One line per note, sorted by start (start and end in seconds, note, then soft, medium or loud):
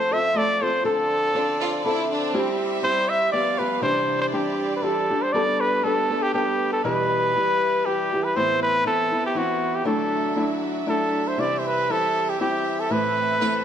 0.00 2.36 F3 medium
0.00 0.12 A3 medium
0.00 0.82 A3 medium
0.00 0.12 C4 medium
0.00 0.11 F4 medium
0.00 0.83 F4 medium
0.00 0.10 A4 medium
0.00 0.14 C5 medium
0.00 0.83 C5 medium
0.11 0.34 C4 soft
0.11 0.34 F4 soft
0.11 0.35 A4 soft
0.11 0.39 E5 loud
0.34 0.61 A3 medium
0.34 0.62 C4 medium
0.34 0.61 F4 medium
0.34 0.60 A4 medium
0.34 0.65 D5 loud
0.62 0.83 C4 soft
0.62 0.84 F4 soft
0.62 0.84 A4 medium
0.62 0.85 C5 medium
0.84 1.33 D3 medium
0.84 1.34 C4 medium
0.84 3.30 C4 medium
0.84 1.34 F4 medium
0.84 2.32 F4 medium
0.84 1.34 A4 medium
0.84 2.07 A4 medium
0.84 2.33 D5 medium
1.34 1.83 D3 medium
1.34 1.84 C4 medium
1.34 1.47 D4 medium
1.34 1.84 F4 medium
1.34 1.84 A4 medium
1.62 1.72 F4 loud
1.84 2.33 D3 medium
1.84 2.33 C4 medium
1.84 2.09 E4 medium
1.84 2.34 F4 medium
1.84 2.34 A4 medium
2.11 2.32 D4 medium
2.33 2.82 G3 medium
2.33 3.32 G3 medium
2.33 2.71 C4 medium
2.33 2.82 C4 medium
2.33 2.83 E4 medium
2.33 3.32 G4 medium
2.33 2.84 G4 medium
2.33 3.32 E5 medium
2.83 3.33 G3 medium
2.83 3.32 C4 medium
2.83 3.33 E4 medium
2.83 3.34 G4 medium
2.83 3.11 C5 loud
3.09 3.32 E5 loud
3.32 3.59 F3 medium
3.32 3.59 G3 medium
3.32 3.59 B3 medium
3.32 3.83 B3 medium
3.32 3.58 G4 medium
3.32 3.83 G4 medium
3.32 3.60 D5 loud
3.32 3.83 F5 medium
3.58 3.81 F3 soft
3.58 3.81 G3 soft
3.58 3.82 B3 soft
3.58 3.81 G4 soft
3.58 3.82 B4 medium
3.81 4.32 C3 medium
3.81 4.31 E3 medium
3.81 4.33 G3 medium
3.81 5.32 C4 medium
3.81 4.33 D4 medium
3.81 5.32 E4 medium
3.81 4.33 G4 medium
3.81 4.18 C5 medium
3.81 5.33 D5 medium
4.21 4.26 C5 medium
4.32 4.81 E3 medium
4.32 4.83 G3 medium
4.32 4.83 D4 medium
4.32 4.74 G4 medium
4.32 4.84 G4 medium
4.76 4.85 B4 medium
4.82 5.10 E3 medium
4.82 5.10 G3 medium
4.82 5.10 D4 medium
4.82 5.09 G4 medium
4.82 5.24 A4 medium
5.10 5.33 G3 soft
5.10 5.34 D4 medium
5.10 5.34 G4 medium
5.22 5.34 C5 medium
5.32 5.84 G3 medium
5.32 6.84 A3 medium
5.32 5.84 B3 medium
5.32 5.84 D4 medium
5.32 6.83 G4 medium
5.32 5.84 A4 medium
5.32 9.82 B4 medium
5.32 5.62 D5 loud
5.61 5.86 B4 medium
5.84 6.11 G3 medium
5.84 6.10 B3 medium
5.84 6.10 D4 medium
5.84 6.24 A4 medium
5.84 6.09 A4 medium
6.10 6.33 B3 soft
6.10 6.33 D4 soft
6.10 6.34 A4 soft
6.22 6.33 G4 medium
6.34 6.84 G3 medium
6.34 6.84 B3 medium
6.34 6.85 D4 medium
6.34 6.70 G4 medium
6.34 6.84 A4 medium
6.72 6.84 A4 medium
6.84 7.35 E2 medium
6.84 7.35 B2 medium
6.84 7.34 E3 medium
6.84 8.34 G3 medium
6.84 7.35 G3 medium
6.84 8.34 E4 medium
6.84 7.36 E4 medium
6.84 7.35 G4 medium
6.84 7.87 B4 medium
7.35 7.86 E3 medium
7.35 7.85 G3 medium
7.35 7.86 E4 medium
7.35 7.86 G4 medium
7.86 8.12 E3 medium
7.86 8.13 G3 medium
7.86 8.13 E4 medium
7.86 8.25 G4 medium
7.86 8.12 G4 medium
8.13 8.35 E3 soft
8.13 8.36 G3 soft
8.13 8.36 E4 soft
8.13 8.36 G4 medium
8.24 8.38 B4 medium
8.36 8.86 A2 medium
8.36 8.84 E3 medium
8.36 9.85 A3 medium
8.36 8.85 B3 medium
8.36 8.84 C4 medium
8.36 8.86 E4 medium
8.36 9.85 E4 medium
8.36 8.62 C5 medium
8.63 8.84 B4 loud
8.85 9.12 E3 medium
8.85 9.12 B3 medium
8.85 9.12 C4 medium
8.85 9.11 E4 medium
8.85 9.22 A4 loud
9.12 9.35 B3 soft
9.12 9.34 C4 soft
9.12 9.35 E4 soft
9.26 9.39 G4 medium
9.35 9.84 E3 medium
9.35 9.85 B3 medium
9.35 9.85 C4 medium
9.35 9.85 E4 medium
9.35 9.77 F#4 medium
9.75 9.86 G4 medium
9.85 10.36 D3 medium
9.85 10.34 F#3 medium
9.85 10.35 A3 medium
9.85 10.35 D4 medium
9.85 11.37 D4 medium
9.85 10.36 E4 medium
9.85 11.37 F#4 medium
9.85 10.58 A4 medium
9.85 13.64 E5 medium
10.35 10.85 F#3 medium
10.35 10.86 A3 medium
10.35 10.86 D4 medium
10.35 10.88 E4 medium
10.86 11.38 F#3 medium
10.86 11.38 A3 medium
10.86 11.38 D4 medium
10.86 11.38 E4 medium
10.86 11.29 A4 medium
11.28 11.41 C5 medium
11.37 11.89 C3 medium
11.37 11.89 E3 medium
11.37 11.88 G3 medium
11.37 11.90 C4 medium
11.37 13.64 C4 medium
11.37 11.90 E4 medium
11.37 12.90 G4 medium
11.37 11.60 D5 loud
11.59 11.68 C5 medium
11.66 11.93 B4 loud
11.89 12.39 E3 medium
11.89 12.39 G3 medium
11.89 12.40 C4 medium
11.89 12.41 E4 medium
11.89 12.31 A4 medium
12.30 12.41 G4 medium
12.39 12.89 E3 medium
12.39 12.90 G3 medium
12.39 12.91 C4 medium
12.39 12.90 E4 medium
12.39 12.81 G4 medium
12.80 12.93 A4 medium
12.90 13.41 A2 medium
12.90 13.39 E3 medium
12.90 13.40 A3 medium
12.90 13.41 C4 medium
12.90 13.40 E4 medium
12.90 13.64 A4 medium
12.90 13.64 B4 medium
13.40 13.64 E3 medium
13.40 13.64 A3 medium
13.40 13.64 C4 medium
13.40 13.64 E4 medium
13.40 13.53 B4 medium